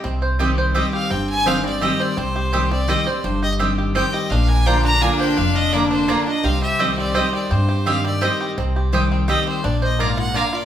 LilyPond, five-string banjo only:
\new Staff \with { instrumentName = "Five-string banjo" } { \time 3/4 \key c \minor \tempo 4 = 169 c'8 c''8 c'8 c''8 c'8 g'8 | c'4 c''8 c'8 g'8 c''8 | c'8 g'8 c''8 c'8 g'8 c''8 | g'8 g'8 c'8 g'8 c''8 g'8 |
d'8 bes'8 c''8 d'8 bes'8 c''8 | d'8 f'8 bes'8 d'8 bes'8 d'8 | g'8 g'8 c'8 g'8 c''8 g'8 | g'8 g'8 c'8 g'8 c''8 g'8 |
c'8 g'8 c''8 c'8 g'8 c'8 | d'8 c''8 bes'8 f'8 d'8 f'8 | }